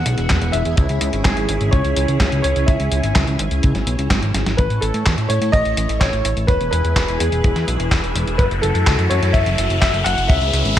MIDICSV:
0, 0, Header, 1, 6, 480
1, 0, Start_track
1, 0, Tempo, 476190
1, 780, Time_signature, 4, 2, 24, 8
1, 10877, End_track
2, 0, Start_track
2, 0, Title_t, "Grand piano"
2, 0, Program_c, 0, 0
2, 0, Note_on_c, 0, 78, 105
2, 525, Note_on_c, 0, 76, 95
2, 555, Note_off_c, 0, 78, 0
2, 767, Note_on_c, 0, 64, 88
2, 780, Note_off_c, 0, 76, 0
2, 1246, Note_on_c, 0, 68, 90
2, 1268, Note_off_c, 0, 64, 0
2, 1725, Note_on_c, 0, 73, 94
2, 1748, Note_off_c, 0, 68, 0
2, 2427, Note_off_c, 0, 73, 0
2, 2442, Note_on_c, 0, 73, 88
2, 2684, Note_on_c, 0, 76, 90
2, 2699, Note_off_c, 0, 73, 0
2, 4092, Note_off_c, 0, 76, 0
2, 4609, Note_on_c, 0, 71, 95
2, 4846, Note_on_c, 0, 69, 91
2, 4862, Note_off_c, 0, 71, 0
2, 5327, Note_on_c, 0, 73, 92
2, 5348, Note_off_c, 0, 69, 0
2, 5556, Note_off_c, 0, 73, 0
2, 5567, Note_on_c, 0, 75, 110
2, 6046, Note_on_c, 0, 73, 100
2, 6068, Note_off_c, 0, 75, 0
2, 6524, Note_on_c, 0, 71, 102
2, 6548, Note_off_c, 0, 73, 0
2, 6748, Note_off_c, 0, 71, 0
2, 6763, Note_on_c, 0, 71, 98
2, 7243, Note_on_c, 0, 68, 79
2, 7266, Note_off_c, 0, 71, 0
2, 8171, Note_off_c, 0, 68, 0
2, 8445, Note_on_c, 0, 71, 90
2, 8501, Note_off_c, 0, 71, 0
2, 8685, Note_on_c, 0, 69, 97
2, 9167, Note_on_c, 0, 73, 88
2, 9187, Note_off_c, 0, 69, 0
2, 9396, Note_off_c, 0, 73, 0
2, 9405, Note_on_c, 0, 76, 107
2, 9869, Note_off_c, 0, 76, 0
2, 9884, Note_on_c, 0, 76, 104
2, 10124, Note_on_c, 0, 78, 105
2, 10140, Note_off_c, 0, 76, 0
2, 10366, Note_on_c, 0, 76, 99
2, 10379, Note_off_c, 0, 78, 0
2, 10877, Note_off_c, 0, 76, 0
2, 10877, End_track
3, 0, Start_track
3, 0, Title_t, "String machine"
3, 0, Program_c, 1, 50
3, 0, Note_on_c, 1, 59, 80
3, 0, Note_on_c, 1, 64, 73
3, 0, Note_on_c, 1, 68, 83
3, 742, Note_off_c, 1, 59, 0
3, 782, Note_on_c, 1, 61, 79
3, 4580, Note_off_c, 1, 64, 0
3, 4580, Note_off_c, 1, 68, 0
3, 4583, Note_off_c, 1, 61, 0
3, 4620, Note_on_c, 1, 57, 82
3, 4620, Note_on_c, 1, 64, 88
3, 4620, Note_on_c, 1, 69, 72
3, 4621, Note_on_c, 1, 73, 74
3, 6521, Note_off_c, 1, 57, 0
3, 6521, Note_off_c, 1, 64, 0
3, 6521, Note_off_c, 1, 69, 0
3, 6521, Note_off_c, 1, 73, 0
3, 6539, Note_on_c, 1, 64, 81
3, 6540, Note_on_c, 1, 68, 71
3, 6540, Note_on_c, 1, 71, 86
3, 8441, Note_off_c, 1, 68, 0
3, 8441, Note_off_c, 1, 71, 0
3, 8459, Note_on_c, 1, 69, 89
3, 8460, Note_on_c, 1, 66, 75
3, 10341, Note_off_c, 1, 64, 0
3, 10361, Note_off_c, 1, 66, 0
3, 10361, Note_off_c, 1, 69, 0
3, 10380, Note_on_c, 1, 76, 87
3, 10381, Note_on_c, 1, 61, 84
3, 10381, Note_on_c, 1, 71, 71
3, 10382, Note_on_c, 1, 68, 72
3, 10877, Note_off_c, 1, 61, 0
3, 10877, Note_off_c, 1, 68, 0
3, 10877, Note_off_c, 1, 71, 0
3, 10877, Note_off_c, 1, 76, 0
3, 10877, End_track
4, 0, Start_track
4, 0, Title_t, "Analog synth bass"
4, 0, Program_c, 2, 38
4, 60, Note_on_c, 2, 35, 89
4, 159, Note_off_c, 2, 35, 0
4, 181, Note_on_c, 2, 28, 77
4, 279, Note_off_c, 2, 28, 0
4, 308, Note_on_c, 2, 28, 101
4, 403, Note_off_c, 2, 28, 0
4, 420, Note_on_c, 2, 28, 75
4, 519, Note_off_c, 2, 28, 0
4, 541, Note_on_c, 2, 28, 98
4, 639, Note_off_c, 2, 28, 0
4, 660, Note_on_c, 2, 28, 82
4, 759, Note_off_c, 2, 28, 0
4, 784, Note_on_c, 2, 37, 102
4, 881, Note_off_c, 2, 37, 0
4, 900, Note_on_c, 2, 37, 75
4, 998, Note_off_c, 2, 37, 0
4, 1019, Note_on_c, 2, 37, 92
4, 1118, Note_off_c, 2, 37, 0
4, 1142, Note_on_c, 2, 32, 77
4, 1240, Note_off_c, 2, 32, 0
4, 1262, Note_on_c, 2, 32, 100
4, 1360, Note_off_c, 2, 32, 0
4, 1382, Note_on_c, 2, 32, 78
4, 1479, Note_off_c, 2, 32, 0
4, 1502, Note_on_c, 2, 32, 94
4, 1600, Note_off_c, 2, 32, 0
4, 1622, Note_on_c, 2, 32, 79
4, 1719, Note_off_c, 2, 32, 0
4, 1741, Note_on_c, 2, 37, 98
4, 1839, Note_off_c, 2, 37, 0
4, 1860, Note_on_c, 2, 37, 73
4, 1959, Note_off_c, 2, 37, 0
4, 1980, Note_on_c, 2, 37, 91
4, 2079, Note_off_c, 2, 37, 0
4, 2101, Note_on_c, 2, 37, 81
4, 2199, Note_off_c, 2, 37, 0
4, 2219, Note_on_c, 2, 37, 106
4, 2318, Note_off_c, 2, 37, 0
4, 2340, Note_on_c, 2, 37, 76
4, 2439, Note_off_c, 2, 37, 0
4, 2462, Note_on_c, 2, 37, 97
4, 2560, Note_off_c, 2, 37, 0
4, 2582, Note_on_c, 2, 37, 81
4, 2680, Note_off_c, 2, 37, 0
4, 2702, Note_on_c, 2, 37, 97
4, 2800, Note_off_c, 2, 37, 0
4, 2821, Note_on_c, 2, 37, 74
4, 2919, Note_off_c, 2, 37, 0
4, 2941, Note_on_c, 2, 37, 97
4, 3039, Note_off_c, 2, 37, 0
4, 3059, Note_on_c, 2, 32, 81
4, 3158, Note_off_c, 2, 32, 0
4, 3181, Note_on_c, 2, 37, 101
4, 3279, Note_off_c, 2, 37, 0
4, 3299, Note_on_c, 2, 37, 75
4, 3398, Note_off_c, 2, 37, 0
4, 3420, Note_on_c, 2, 32, 97
4, 3519, Note_off_c, 2, 32, 0
4, 3539, Note_on_c, 2, 37, 77
4, 3638, Note_off_c, 2, 37, 0
4, 3669, Note_on_c, 2, 37, 102
4, 3763, Note_off_c, 2, 37, 0
4, 3777, Note_on_c, 2, 32, 74
4, 3877, Note_off_c, 2, 32, 0
4, 3899, Note_on_c, 2, 35, 91
4, 3998, Note_off_c, 2, 35, 0
4, 4018, Note_on_c, 2, 37, 81
4, 4118, Note_off_c, 2, 37, 0
4, 4138, Note_on_c, 2, 32, 104
4, 4238, Note_off_c, 2, 32, 0
4, 4257, Note_on_c, 2, 32, 73
4, 4357, Note_off_c, 2, 32, 0
4, 4378, Note_on_c, 2, 32, 100
4, 4478, Note_off_c, 2, 32, 0
4, 4499, Note_on_c, 2, 32, 82
4, 4598, Note_off_c, 2, 32, 0
4, 4624, Note_on_c, 2, 33, 99
4, 4721, Note_off_c, 2, 33, 0
4, 4739, Note_on_c, 2, 33, 73
4, 4838, Note_off_c, 2, 33, 0
4, 4859, Note_on_c, 2, 33, 90
4, 4958, Note_off_c, 2, 33, 0
4, 4979, Note_on_c, 2, 45, 80
4, 5078, Note_off_c, 2, 45, 0
4, 5106, Note_on_c, 2, 40, 96
4, 5201, Note_off_c, 2, 40, 0
4, 5218, Note_on_c, 2, 45, 77
4, 5318, Note_off_c, 2, 45, 0
4, 5338, Note_on_c, 2, 45, 95
4, 5438, Note_off_c, 2, 45, 0
4, 5458, Note_on_c, 2, 45, 81
4, 5557, Note_off_c, 2, 45, 0
4, 5578, Note_on_c, 2, 33, 105
4, 5678, Note_off_c, 2, 33, 0
4, 5699, Note_on_c, 2, 33, 78
4, 5798, Note_off_c, 2, 33, 0
4, 5819, Note_on_c, 2, 33, 90
4, 5918, Note_off_c, 2, 33, 0
4, 5939, Note_on_c, 2, 33, 81
4, 6038, Note_off_c, 2, 33, 0
4, 6058, Note_on_c, 2, 33, 105
4, 6158, Note_off_c, 2, 33, 0
4, 6179, Note_on_c, 2, 33, 75
4, 6278, Note_off_c, 2, 33, 0
4, 6298, Note_on_c, 2, 33, 94
4, 6398, Note_off_c, 2, 33, 0
4, 6418, Note_on_c, 2, 33, 82
4, 6517, Note_off_c, 2, 33, 0
4, 6537, Note_on_c, 2, 28, 97
4, 6637, Note_off_c, 2, 28, 0
4, 6659, Note_on_c, 2, 28, 76
4, 6758, Note_off_c, 2, 28, 0
4, 6779, Note_on_c, 2, 28, 95
4, 6878, Note_off_c, 2, 28, 0
4, 6899, Note_on_c, 2, 40, 78
4, 6998, Note_off_c, 2, 40, 0
4, 7018, Note_on_c, 2, 28, 106
4, 7117, Note_off_c, 2, 28, 0
4, 7138, Note_on_c, 2, 28, 78
4, 7238, Note_off_c, 2, 28, 0
4, 7258, Note_on_c, 2, 40, 94
4, 7358, Note_off_c, 2, 40, 0
4, 7378, Note_on_c, 2, 28, 82
4, 7478, Note_off_c, 2, 28, 0
4, 7503, Note_on_c, 2, 28, 105
4, 7600, Note_off_c, 2, 28, 0
4, 7618, Note_on_c, 2, 40, 78
4, 7718, Note_off_c, 2, 40, 0
4, 7738, Note_on_c, 2, 35, 94
4, 7838, Note_off_c, 2, 35, 0
4, 7858, Note_on_c, 2, 28, 79
4, 7958, Note_off_c, 2, 28, 0
4, 7979, Note_on_c, 2, 28, 101
4, 8078, Note_off_c, 2, 28, 0
4, 8098, Note_on_c, 2, 28, 77
4, 8198, Note_off_c, 2, 28, 0
4, 8218, Note_on_c, 2, 28, 100
4, 8318, Note_off_c, 2, 28, 0
4, 8338, Note_on_c, 2, 28, 81
4, 8438, Note_off_c, 2, 28, 0
4, 8456, Note_on_c, 2, 30, 104
4, 8557, Note_off_c, 2, 30, 0
4, 8579, Note_on_c, 2, 30, 78
4, 8678, Note_off_c, 2, 30, 0
4, 8698, Note_on_c, 2, 30, 93
4, 8798, Note_off_c, 2, 30, 0
4, 8817, Note_on_c, 2, 42, 77
4, 8917, Note_off_c, 2, 42, 0
4, 8941, Note_on_c, 2, 37, 101
4, 9039, Note_off_c, 2, 37, 0
4, 9057, Note_on_c, 2, 42, 73
4, 9157, Note_off_c, 2, 42, 0
4, 9178, Note_on_c, 2, 42, 101
4, 9278, Note_off_c, 2, 42, 0
4, 9297, Note_on_c, 2, 42, 81
4, 9397, Note_off_c, 2, 42, 0
4, 9415, Note_on_c, 2, 30, 101
4, 9516, Note_off_c, 2, 30, 0
4, 9539, Note_on_c, 2, 30, 78
4, 9638, Note_off_c, 2, 30, 0
4, 9659, Note_on_c, 2, 30, 93
4, 9758, Note_off_c, 2, 30, 0
4, 9777, Note_on_c, 2, 30, 77
4, 9877, Note_off_c, 2, 30, 0
4, 9898, Note_on_c, 2, 30, 105
4, 9998, Note_off_c, 2, 30, 0
4, 10017, Note_on_c, 2, 30, 78
4, 10117, Note_off_c, 2, 30, 0
4, 10137, Note_on_c, 2, 30, 92
4, 10237, Note_off_c, 2, 30, 0
4, 10258, Note_on_c, 2, 30, 83
4, 10358, Note_off_c, 2, 30, 0
4, 10378, Note_on_c, 2, 37, 103
4, 10477, Note_off_c, 2, 37, 0
4, 10497, Note_on_c, 2, 37, 79
4, 10597, Note_off_c, 2, 37, 0
4, 10617, Note_on_c, 2, 37, 94
4, 10717, Note_off_c, 2, 37, 0
4, 10737, Note_on_c, 2, 32, 79
4, 10837, Note_off_c, 2, 32, 0
4, 10877, End_track
5, 0, Start_track
5, 0, Title_t, "Riser"
5, 0, Program_c, 3, 103
5, 4620, Note_on_c, 3, 60, 77
5, 10877, Note_off_c, 3, 60, 0
5, 10877, End_track
6, 0, Start_track
6, 0, Title_t, "Drums"
6, 58, Note_on_c, 9, 42, 88
6, 159, Note_off_c, 9, 42, 0
6, 178, Note_on_c, 9, 42, 38
6, 279, Note_off_c, 9, 42, 0
6, 298, Note_on_c, 9, 38, 107
6, 298, Note_on_c, 9, 39, 92
6, 298, Note_on_c, 9, 42, 62
6, 308, Note_on_c, 9, 36, 92
6, 399, Note_off_c, 9, 38, 0
6, 399, Note_off_c, 9, 39, 0
6, 399, Note_off_c, 9, 42, 0
6, 409, Note_off_c, 9, 36, 0
6, 419, Note_on_c, 9, 42, 39
6, 520, Note_off_c, 9, 42, 0
6, 538, Note_on_c, 9, 42, 92
6, 638, Note_off_c, 9, 42, 0
6, 659, Note_on_c, 9, 42, 38
6, 760, Note_off_c, 9, 42, 0
6, 779, Note_on_c, 9, 42, 65
6, 784, Note_on_c, 9, 36, 114
6, 880, Note_off_c, 9, 42, 0
6, 885, Note_off_c, 9, 36, 0
6, 899, Note_on_c, 9, 42, 39
6, 999, Note_off_c, 9, 42, 0
6, 1018, Note_on_c, 9, 42, 96
6, 1119, Note_off_c, 9, 42, 0
6, 1138, Note_on_c, 9, 42, 38
6, 1239, Note_off_c, 9, 42, 0
6, 1258, Note_on_c, 9, 38, 108
6, 1258, Note_on_c, 9, 39, 89
6, 1258, Note_on_c, 9, 42, 66
6, 1262, Note_on_c, 9, 36, 99
6, 1359, Note_off_c, 9, 38, 0
6, 1359, Note_off_c, 9, 39, 0
6, 1359, Note_off_c, 9, 42, 0
6, 1363, Note_off_c, 9, 36, 0
6, 1379, Note_on_c, 9, 42, 39
6, 1479, Note_off_c, 9, 42, 0
6, 1498, Note_on_c, 9, 42, 91
6, 1599, Note_off_c, 9, 42, 0
6, 1619, Note_on_c, 9, 42, 39
6, 1720, Note_off_c, 9, 42, 0
6, 1739, Note_on_c, 9, 42, 64
6, 1742, Note_on_c, 9, 36, 109
6, 1840, Note_off_c, 9, 42, 0
6, 1843, Note_off_c, 9, 36, 0
6, 1860, Note_on_c, 9, 42, 39
6, 1960, Note_off_c, 9, 42, 0
6, 1980, Note_on_c, 9, 42, 91
6, 2081, Note_off_c, 9, 42, 0
6, 2100, Note_on_c, 9, 42, 41
6, 2201, Note_off_c, 9, 42, 0
6, 2219, Note_on_c, 9, 36, 98
6, 2220, Note_on_c, 9, 38, 107
6, 2220, Note_on_c, 9, 39, 90
6, 2220, Note_on_c, 9, 42, 63
6, 2320, Note_off_c, 9, 36, 0
6, 2321, Note_off_c, 9, 38, 0
6, 2321, Note_off_c, 9, 39, 0
6, 2321, Note_off_c, 9, 42, 0
6, 2341, Note_on_c, 9, 42, 40
6, 2441, Note_off_c, 9, 42, 0
6, 2460, Note_on_c, 9, 42, 91
6, 2561, Note_off_c, 9, 42, 0
6, 2580, Note_on_c, 9, 42, 38
6, 2681, Note_off_c, 9, 42, 0
6, 2700, Note_on_c, 9, 42, 67
6, 2702, Note_on_c, 9, 36, 124
6, 2801, Note_off_c, 9, 42, 0
6, 2803, Note_off_c, 9, 36, 0
6, 2820, Note_on_c, 9, 42, 42
6, 2921, Note_off_c, 9, 42, 0
6, 2939, Note_on_c, 9, 42, 94
6, 3040, Note_off_c, 9, 42, 0
6, 3059, Note_on_c, 9, 42, 40
6, 3160, Note_off_c, 9, 42, 0
6, 3179, Note_on_c, 9, 38, 111
6, 3179, Note_on_c, 9, 39, 96
6, 3179, Note_on_c, 9, 42, 65
6, 3182, Note_on_c, 9, 36, 91
6, 3280, Note_off_c, 9, 38, 0
6, 3280, Note_off_c, 9, 39, 0
6, 3280, Note_off_c, 9, 42, 0
6, 3282, Note_off_c, 9, 36, 0
6, 3300, Note_on_c, 9, 42, 40
6, 3401, Note_off_c, 9, 42, 0
6, 3420, Note_on_c, 9, 42, 96
6, 3521, Note_off_c, 9, 42, 0
6, 3540, Note_on_c, 9, 42, 41
6, 3640, Note_off_c, 9, 42, 0
6, 3660, Note_on_c, 9, 42, 66
6, 3670, Note_on_c, 9, 36, 120
6, 3761, Note_off_c, 9, 42, 0
6, 3771, Note_off_c, 9, 36, 0
6, 3779, Note_on_c, 9, 38, 35
6, 3779, Note_on_c, 9, 42, 41
6, 3880, Note_off_c, 9, 38, 0
6, 3880, Note_off_c, 9, 42, 0
6, 3900, Note_on_c, 9, 42, 95
6, 4001, Note_off_c, 9, 42, 0
6, 4020, Note_on_c, 9, 42, 41
6, 4121, Note_off_c, 9, 42, 0
6, 4138, Note_on_c, 9, 36, 105
6, 4139, Note_on_c, 9, 38, 107
6, 4139, Note_on_c, 9, 39, 99
6, 4139, Note_on_c, 9, 42, 67
6, 4239, Note_off_c, 9, 36, 0
6, 4240, Note_off_c, 9, 38, 0
6, 4240, Note_off_c, 9, 39, 0
6, 4240, Note_off_c, 9, 42, 0
6, 4259, Note_on_c, 9, 42, 41
6, 4360, Note_off_c, 9, 42, 0
6, 4379, Note_on_c, 9, 38, 61
6, 4379, Note_on_c, 9, 42, 93
6, 4480, Note_off_c, 9, 38, 0
6, 4480, Note_off_c, 9, 42, 0
6, 4500, Note_on_c, 9, 38, 67
6, 4500, Note_on_c, 9, 42, 40
6, 4601, Note_off_c, 9, 38, 0
6, 4601, Note_off_c, 9, 42, 0
6, 4620, Note_on_c, 9, 42, 67
6, 4624, Note_on_c, 9, 36, 116
6, 4721, Note_off_c, 9, 42, 0
6, 4725, Note_off_c, 9, 36, 0
6, 4741, Note_on_c, 9, 42, 40
6, 4842, Note_off_c, 9, 42, 0
6, 4861, Note_on_c, 9, 42, 93
6, 4962, Note_off_c, 9, 42, 0
6, 4981, Note_on_c, 9, 42, 40
6, 5082, Note_off_c, 9, 42, 0
6, 5101, Note_on_c, 9, 38, 114
6, 5101, Note_on_c, 9, 39, 100
6, 5101, Note_on_c, 9, 42, 66
6, 5106, Note_on_c, 9, 36, 91
6, 5202, Note_off_c, 9, 38, 0
6, 5202, Note_off_c, 9, 39, 0
6, 5202, Note_off_c, 9, 42, 0
6, 5207, Note_off_c, 9, 36, 0
6, 5221, Note_on_c, 9, 42, 39
6, 5321, Note_off_c, 9, 42, 0
6, 5340, Note_on_c, 9, 42, 95
6, 5441, Note_off_c, 9, 42, 0
6, 5460, Note_on_c, 9, 42, 41
6, 5561, Note_off_c, 9, 42, 0
6, 5578, Note_on_c, 9, 36, 108
6, 5579, Note_on_c, 9, 42, 62
6, 5679, Note_off_c, 9, 36, 0
6, 5680, Note_off_c, 9, 42, 0
6, 5699, Note_on_c, 9, 42, 39
6, 5800, Note_off_c, 9, 42, 0
6, 5819, Note_on_c, 9, 42, 89
6, 5920, Note_off_c, 9, 42, 0
6, 5940, Note_on_c, 9, 42, 40
6, 6041, Note_off_c, 9, 42, 0
6, 6059, Note_on_c, 9, 36, 108
6, 6060, Note_on_c, 9, 38, 115
6, 6060, Note_on_c, 9, 39, 99
6, 6060, Note_on_c, 9, 42, 67
6, 6160, Note_off_c, 9, 36, 0
6, 6161, Note_off_c, 9, 38, 0
6, 6161, Note_off_c, 9, 39, 0
6, 6161, Note_off_c, 9, 42, 0
6, 6179, Note_on_c, 9, 42, 42
6, 6280, Note_off_c, 9, 42, 0
6, 6299, Note_on_c, 9, 42, 95
6, 6400, Note_off_c, 9, 42, 0
6, 6419, Note_on_c, 9, 42, 39
6, 6520, Note_off_c, 9, 42, 0
6, 6537, Note_on_c, 9, 36, 123
6, 6540, Note_on_c, 9, 42, 65
6, 6637, Note_off_c, 9, 36, 0
6, 6640, Note_off_c, 9, 42, 0
6, 6659, Note_on_c, 9, 42, 39
6, 6760, Note_off_c, 9, 42, 0
6, 6780, Note_on_c, 9, 42, 91
6, 6881, Note_off_c, 9, 42, 0
6, 6901, Note_on_c, 9, 42, 37
6, 7002, Note_off_c, 9, 42, 0
6, 7018, Note_on_c, 9, 36, 103
6, 7021, Note_on_c, 9, 38, 116
6, 7021, Note_on_c, 9, 39, 107
6, 7021, Note_on_c, 9, 42, 63
6, 7119, Note_off_c, 9, 36, 0
6, 7122, Note_off_c, 9, 38, 0
6, 7122, Note_off_c, 9, 39, 0
6, 7122, Note_off_c, 9, 42, 0
6, 7141, Note_on_c, 9, 42, 40
6, 7242, Note_off_c, 9, 42, 0
6, 7261, Note_on_c, 9, 42, 93
6, 7362, Note_off_c, 9, 42, 0
6, 7381, Note_on_c, 9, 42, 40
6, 7482, Note_off_c, 9, 42, 0
6, 7502, Note_on_c, 9, 42, 66
6, 7504, Note_on_c, 9, 36, 117
6, 7603, Note_off_c, 9, 42, 0
6, 7605, Note_off_c, 9, 36, 0
6, 7621, Note_on_c, 9, 38, 39
6, 7621, Note_on_c, 9, 42, 41
6, 7722, Note_off_c, 9, 38, 0
6, 7722, Note_off_c, 9, 42, 0
6, 7741, Note_on_c, 9, 42, 94
6, 7842, Note_off_c, 9, 42, 0
6, 7861, Note_on_c, 9, 42, 39
6, 7961, Note_off_c, 9, 42, 0
6, 7979, Note_on_c, 9, 36, 108
6, 7981, Note_on_c, 9, 38, 114
6, 7981, Note_on_c, 9, 39, 95
6, 7981, Note_on_c, 9, 42, 65
6, 8080, Note_off_c, 9, 36, 0
6, 8082, Note_off_c, 9, 38, 0
6, 8082, Note_off_c, 9, 39, 0
6, 8082, Note_off_c, 9, 42, 0
6, 8102, Note_on_c, 9, 42, 39
6, 8202, Note_off_c, 9, 42, 0
6, 8221, Note_on_c, 9, 42, 88
6, 8321, Note_off_c, 9, 42, 0
6, 8341, Note_on_c, 9, 42, 36
6, 8442, Note_off_c, 9, 42, 0
6, 8457, Note_on_c, 9, 36, 120
6, 8461, Note_on_c, 9, 42, 66
6, 8558, Note_off_c, 9, 36, 0
6, 8562, Note_off_c, 9, 42, 0
6, 8581, Note_on_c, 9, 42, 37
6, 8682, Note_off_c, 9, 42, 0
6, 8700, Note_on_c, 9, 42, 88
6, 8801, Note_off_c, 9, 42, 0
6, 8820, Note_on_c, 9, 42, 38
6, 8921, Note_off_c, 9, 42, 0
6, 8939, Note_on_c, 9, 38, 127
6, 8939, Note_on_c, 9, 39, 104
6, 8939, Note_on_c, 9, 42, 64
6, 8941, Note_on_c, 9, 36, 102
6, 9040, Note_off_c, 9, 38, 0
6, 9040, Note_off_c, 9, 39, 0
6, 9040, Note_off_c, 9, 42, 0
6, 9042, Note_off_c, 9, 36, 0
6, 9060, Note_on_c, 9, 42, 39
6, 9161, Note_off_c, 9, 42, 0
6, 9179, Note_on_c, 9, 42, 90
6, 9280, Note_off_c, 9, 42, 0
6, 9300, Note_on_c, 9, 42, 37
6, 9400, Note_off_c, 9, 42, 0
6, 9415, Note_on_c, 9, 36, 110
6, 9419, Note_on_c, 9, 42, 62
6, 9516, Note_off_c, 9, 36, 0
6, 9520, Note_off_c, 9, 42, 0
6, 9539, Note_on_c, 9, 42, 40
6, 9640, Note_off_c, 9, 42, 0
6, 9659, Note_on_c, 9, 42, 90
6, 9760, Note_off_c, 9, 42, 0
6, 9780, Note_on_c, 9, 42, 38
6, 9881, Note_off_c, 9, 42, 0
6, 9899, Note_on_c, 9, 36, 103
6, 9900, Note_on_c, 9, 38, 117
6, 9900, Note_on_c, 9, 39, 101
6, 9900, Note_on_c, 9, 42, 63
6, 9999, Note_off_c, 9, 36, 0
6, 10000, Note_off_c, 9, 38, 0
6, 10000, Note_off_c, 9, 39, 0
6, 10000, Note_off_c, 9, 42, 0
6, 10020, Note_on_c, 9, 42, 38
6, 10121, Note_off_c, 9, 42, 0
6, 10139, Note_on_c, 9, 42, 89
6, 10240, Note_off_c, 9, 42, 0
6, 10259, Note_on_c, 9, 42, 37
6, 10360, Note_off_c, 9, 42, 0
6, 10379, Note_on_c, 9, 36, 127
6, 10379, Note_on_c, 9, 42, 60
6, 10479, Note_off_c, 9, 36, 0
6, 10480, Note_off_c, 9, 42, 0
6, 10499, Note_on_c, 9, 42, 37
6, 10600, Note_off_c, 9, 42, 0
6, 10619, Note_on_c, 9, 42, 90
6, 10720, Note_off_c, 9, 42, 0
6, 10740, Note_on_c, 9, 42, 36
6, 10840, Note_off_c, 9, 42, 0
6, 10877, End_track
0, 0, End_of_file